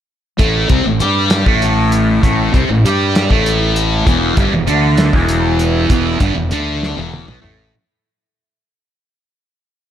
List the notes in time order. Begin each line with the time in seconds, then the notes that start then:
0.38 A1 A2 A3, kick, closed hi-hat
0.69 C2 C3 C4, kick, closed hi-hat
0.85 A1 A2
1.00 G2 G3 G4, closed hi-hat
1.30 snare, closed hi-hat
1.46 A1 A2 A3, kick
1.62 closed hi-hat
1.92 closed hi-hat
2.22 A1 A2 A3, kick, closed hi-hat
2.54 C2 C3 C4, kick, closed hi-hat
2.69 A1 A2
2.84 G2 G3 G4, closed hi-hat
3.15 snare, closed hi-hat
3.30 A1 A2 A3, kick
3.46 closed hi-hat
3.76 closed hi-hat
4.06 E1 E2 E3, kick, closed hi-hat
4.37 G1 G2 G3, kick, closed hi-hat
4.51 E1 E2
4.67 D2 D3 D4, closed hi-hat
4.97 snare, closed hi-hat
5.13 E1 E2 E3, kick
5.29 closed hi-hat
5.59 closed hi-hat
5.90 E1 E2 E3, kick, closed hi-hat
6.20 G1 G2 G3, kick, closed hi-hat
6.35 E1 E2
6.51 D2 D3 D4, closed hi-hat
6.83 snare
6.96 E1 E2 E3
7.14 high tom
7.27 B1 B2 B3, mid tom
7.41 A1 A2 A3, mid tom